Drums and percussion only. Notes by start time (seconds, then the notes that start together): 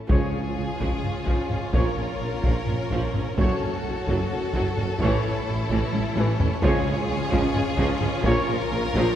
0.09 taiko
0.81 taiko
1.04 taiko low-mid
1.26 taiko
1.50 taiko low-mid
1.73 taiko
2.43 taiko
2.67 taiko low-mid
2.90 taiko
3.14 taiko low-mid
3.38 taiko
4.07 taiko
4.31 taiko low-mid
4.54 taiko
4.77 taiko low-mid
5.00 taiko
5.70 taiko
5.93 taiko high
6.16 taiko high
6.40 taiko low
6.63 taiko
7.32 taiko
7.54 taiko low-mid
7.78 taiko
8.01 taiko low-mid
8.23 taiko
8.93 taiko